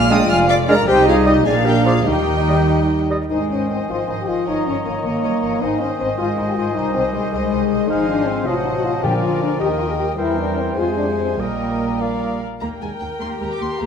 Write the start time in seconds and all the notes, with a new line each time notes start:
Already playing: A#1 A#2 G#3 F4 D5 F5 F6
0.10 G#3 D4 D#5 F5 G5 D#6
0.29 F1 F2 F5 G#5 F6
0.49 D5 F5 D6
0.68 G#3 D4 A#4 D5 F5 A#5
0.86 C2 C3 G3 D#4 G4 C5 D#5 G5
1.07 F4 G#4 F5
1.26 G3 D#4 G4 D#5
1.45 A#1 A#2 F3 A#3 D4 G#4 D5 F5 G#5
1.65 G4 A#4 G5
1.85 F3 F4 G#4 D5 F5
2.05 D#2 D#3 G3 D#4 G4 D#5 G5
2.49 G3 D#5
3.10 G3 D#5
3.30 G#1 D#3 G#3 D#4 C5 D#5 G#5
3.50 G#1 C#4 C5 D#5
3.70 G#1 C4 C5 D#5
3.89 G#1 F3 F4 C5 D#5
4.08 G#1 D#4 C5 D#5
4.19 G4
4.27 G#1 F4 C5 D#5
4.46 G1 D#4 C#5 D#5 A#5
4.66 G1 C#4 C#5 D#5
4.85 G1 A#3 C#5 D#5
5.04 G1 D#3 A#3 C#5 D#5
5.23 G1 G3 C#5 D#5
5.42 G1 F3 C#5 D#5
5.61 G#1 D#3 D#4 C5 D#5 G#5
5.81 G#1 C#4 C5 D#5
5.99 G#1 C4 C5 D#5
6.19 G#1 G#3 F4 C5 D#5
6.37 G#1 D#4 C5 D#5
6.48 G4
6.56 G#1 F4 C5 D#5
6.76 C2 G3 D#4 C5 D#5
6.95 C2 C4 C5 D#5
7.13 C2 G#3 C5 D#5
7.33 C2 G#3 C5 D#5
7.52 C2 C5 D#5
7.70 C2 C5 D#5
7.89 G#1 F3 G#3 D#4 C5 D#5 F5 G#5
8.09 D4
8.26 C4
8.46 A1 C3 F#3 F4 C5 D#5 F#5 A5
8.66 D#4
8.75 F#4
8.85 F4
9.03 A#1 A#2 D3 F3 G4 A#4 D5 F5 G#5
9.23 F4
9.42 D4
9.60 D#2 D#3 G4 A#4 D#5 G5
9.79 F4
9.89 G#4
9.98 G4
10.17 E2 E3 G3 E4 A#4 C5 G5
10.38 D4
10.59 C4
10.77 F2 C3 G#3 F4 G#4 C5 G#5
10.98 D4
11.20 C4
11.39 A#1 A#2 G3 A#3 A#4 D#5 G5
12.01 A#2 A#4 D5 F5
12.60 D#2 A#3 A#4 G5 A#5
12.81 D#2 G#3 G#5
13.00 D#2 A#3 G5
13.20 D#2 A#3 G4 C6
13.40 D#2 G#3 A#5
13.51 D6
13.59 D#2 A#3 C6
13.77 D2 A#3 G#4 F5 A#5